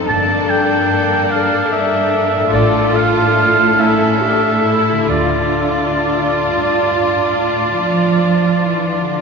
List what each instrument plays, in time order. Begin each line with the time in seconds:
Already playing: harp G2 A#3, violin section A4
0.00 harp D4
0.08 double bass section G1, cello section G2, violin section A#3 D4, viola section D4, oboe A5
0.50 oboe G5
1.30 violin section D4, oboe F5
1.72 oboe E5
2.36 harp A2
2.40 harp A3
2.44 harp D4
2.49 double bass section A1, cello section A2, violin section A3 F4 A4, harp F4, viola section F4
2.53 oboe D5
2.95 oboe F5
3.61 harp A2
3.66 harp A3
3.70 harp C#4
3.74 harp G4
3.79 violin section C#4, viola section E4, oboe E5
4.21 violin section D4, viola section G4
4.65 violin section E4, viola section E4
4.91 harp D3
4.95 harp A3 D4
5.04 violin section D4 F4, harp F4
5.08 double bass section D2, cello section D3, violin section F4, viola section F4, oboe D5
6.41 cello section G2
7.31 cello section A2
7.76 cello section F3
8.62 cello section E3
9.03 cello section D3